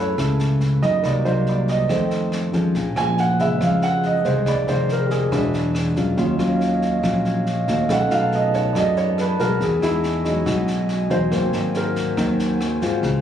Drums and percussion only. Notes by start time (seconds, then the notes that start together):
0.18 kick, cross-stick, snare
0.40 snare
0.61 snare
0.82 kick, snare
1.04 kick, cross-stick, snare
1.25 snare
1.47 snare
1.68 kick, snare
1.89 kick, cross-stick, snare
2.11 snare
2.32 cross-stick, snare
2.53 kick, snare
2.75 kick, snare
2.96 cross-stick, snare
3.18 snare
3.39 kick, snare
3.61 kick, cross-stick, snare
3.82 snare
4.03 snare
4.25 kick, snare
4.46 kick, cross-stick, snare
4.68 snare
4.89 snare
5.11 kick, snare
5.32 kick, cross-stick, snare
5.54 snare
5.75 cross-stick, snare
5.96 kick, snare
6.18 kick, snare
6.39 cross-stick, snare
6.61 snare
6.82 kick, snare
7.04 kick, cross-stick, snare
7.25 snare
7.47 snare
7.68 kick, snare
7.89 kick, cross-stick, snare
8.11 snare
8.32 snare
8.54 kick, snare
8.75 kick, cross-stick, snare
8.97 snare
9.18 cross-stick, snare
9.39 kick, snare
9.61 kick, snare
9.82 cross-stick, snare
10.04 snare
10.25 kick, snare
10.46 kick, cross-stick, snare
10.68 snare
10.89 snare
11.10 kick, snare
11.32 kick, cross-stick, snare
11.53 snare
11.74 snare
11.96 kick, snare
12.17 kick, cross-stick, snare
12.39 snare
12.61 cross-stick, snare
12.82 kick, snare
13.03 kick, snare